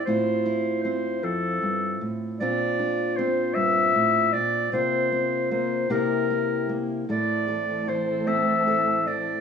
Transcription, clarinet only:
\new Staff \with { instrumentName = "Clarinet" } { \time 6/8 \key f \major \tempo 4. = 51 c''4 c''8 a'4 r8 | d''4 c''8 e''4 d''8 | c''4 c''8 bes'4 r8 | d''4 c''8 e''4 d''8 | }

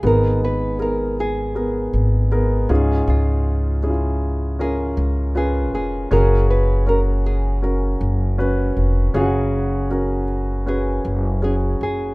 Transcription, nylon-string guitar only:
\new Staff \with { instrumentName = "Nylon-string guitar" } { \time 4/4 \key fis \major \tempo 4 = 79 ais'8 b'8 ais'8 gis'2~ gis'8 | eis'2 gis'4 gis'8 gis'8 | ais'8 b'8 ais'8 gis'2~ gis'8 | fis'2 gis'4 gis'8 gis'8 | }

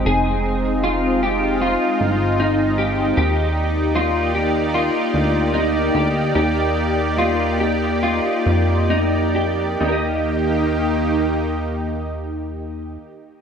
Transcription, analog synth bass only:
\new Staff \with { instrumentName = "Analog synth bass" } { \clef bass \time 4/4 \key ees \major \tempo 4 = 73 f,,2~ f,,16 r16 g,,4. | ees,2~ ees,16 r16 d,4 d,8 | ees,2~ ees,16 r16 f,4. | ees,1 | }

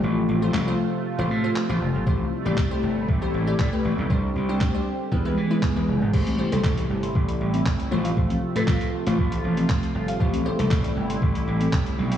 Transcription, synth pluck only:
\new Staff \with { instrumentName = "Synth pluck" } { \time 4/4 \key a \minor \tempo 4 = 118 <a f' c''>8 r16 <a f' c''>16 r16 <a f' c''>8. r16 <a f' c''>16 r16 <a f' c''>16 r16 <a f' c''>8 r16 | <a g' c''>8 r16 <a g' d''>16 r16 <a g' c''>8. r16 <a g' c''>16 r16 <a g' d''>16 r16 <a g' b'>8 r16 | <g d' c''>8 r16 <g d' c''>16 r16 <g d' c''>8. <gis e' b'>16 <gis e' b'>16 r16 <gis e' b'>16 r16 <gis e' b'>8 r16 | <a g' c''>16 r16 <a g' c''>16 <a g' c''>4~ <a g' c''>16 r4. <a f' c''>8~ |
<a f' c''>8 r16 <a f' b'>8. r16 <a f' c''>4~ <a f' c''>16 r4 | <a g' c''>16 r16 <a g' c''>16 <a g' a'>4~ <a g' a'>16 r2 | }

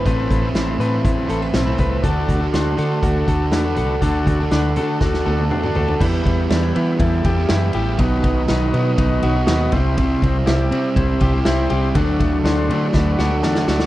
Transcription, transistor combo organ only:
\new Staff \with { instrumentName = "Transistor combo organ" } { \time 4/4 \key d \mixolydian \tempo 4 = 121 <c' a' b'>4 <c' a' b'>8 <c' a' b'>8 <c' a' b'>4 <c' a' b'>4 | <d' fis' a'>4 <d' fis' c''>8 <d' fis' c''>8 <d' fis' a'>4 <d' fis' b'>4 | <d' fis' a'>4 <d' fis' b'>8 <d' fis' a'>8 <d' fis' a'>4 <d' fis' a'>4 | <e' g' b'>4 <e' g' b'>4 <e' g' a'>4 <e' g' b'>4 |
<dis' fis' b'>4 <dis' fis' b'>4 <dis' fis' b'>4 <dis' fis' b'>8 <e' g' c''>8~ | <e' g' c''>4 <e' g' d''>4 <e' g' c''>4 <e' g' c''>4 | <d' fis' a'>4 <d' fis' c''>4 <d' fis' b'>4 <d' fis' a'>4 | }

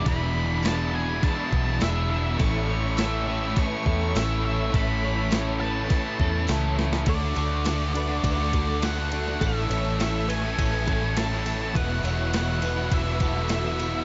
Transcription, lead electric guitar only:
\new Staff \with { instrumentName = "Lead electric guitar" } { \time 4/4 \key a \major \tempo 4 = 103 b''4 a''8 gis''8 a''4 e''8 e''8 | cis'''4 e''8 e''8 cis'''4 e''8 e''8 | b''4 r8 a''4. r4 | d''2 d''4 fis''4 |
e''4 e''8 gis''4. a''4 | fis''4 fis''4 e''4 e''4 | }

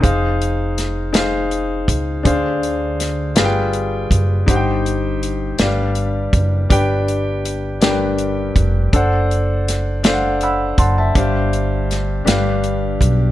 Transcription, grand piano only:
<<
  \new Staff \with { instrumentName = "Grand piano" } { \time 6/8 \key g \phrygian \tempo 4. = 54 << { <bes'' ees'''>16 r2 r8. | r2. | r2. | r2. |
r2 <fis'' b'' e'''>8 <fis'' a'' c'''>16 <e'' a''>16~ | <e'' a''>16 r2 r8. | } \\ { <ees' aes' c'' f''>4 r8 <ees' aes' c'' f''>4 r8 | <d' aes' c'' f''>4 r8 <f' aes' b' f'' g''>4 r8 | <ees' g' c'' fis'' g''>4 r8 <d' g' b' f''>4 r8 | <d' g' b' g''>4 r8 <d' g' bes' b' g''>4 r8 |
<d' a' c'' fis''>4 r8 <d' a' c'' f'' fis''>4 r8 | <d' g' c'' f''>4 r8 <d' g' b' f''>4 r8 | } >> }
  \new Staff \with { instrumentName = "Grand piano" } { \clef bass \time 6/8 \key g \phrygian r2. | d4. g4. | g,4. g4. | r4. g,4. |
r2. | g,4. g,4. | }
>>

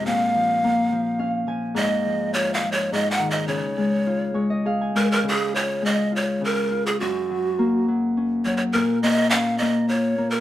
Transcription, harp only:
<<
  \new Staff \with { instrumentName = "Harp" } { \time 3/4 \key des \major \tempo 4 = 104 r2 f''8 aes''8 | r2. | r4. des''16 ees''16 f''16 aes''8. | r2. |
r2. | r2. | }
  \new Staff \with { instrumentName = "Harp" } { \clef bass \time 3/4 \key des \major bes,8 f8 bes8 f8 des'8 f8 | aes,8 f8 f'8 f8 aes,8 ees8 | des8 aes8 f'8 aes8 aes'8 aes8 | des8 f'8 aes8 f'8 des8 f'8 |
ges,8 ges8 bes8 ges8 des'8 ges8 | bes,8 bes8 des'8 bes8 f'8 bes8 | }
>>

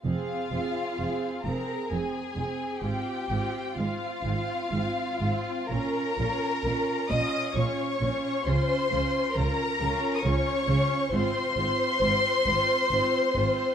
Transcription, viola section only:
\new Staff \with { instrumentName = "Viola section" } { \time 3/4 \key f \minor \tempo 4 = 66 <c' aes'>8 <c' aes'>8 <c' aes'>8 <c' aes'>8 <c' aes'>8 <c' aes'>8 | <c' f'>8 <c' f'>8 <c' f'>8 <c' f'>8 <c' f'>8 <c' f'>8 | <des' f'>8 <des' f'>8 <des' f'>8 <des' f'>8 <des' f'>8 <des' f'>8 | <des' f'>8 <des' f'>8 <des' f'>8 <des' f'>8 <des' f'>8 <des' f'>8 |
<c' f'>8 <c' f'>8 <c' f'>8 <c' f'>8 <c' f'>8 <c' f'>8 | }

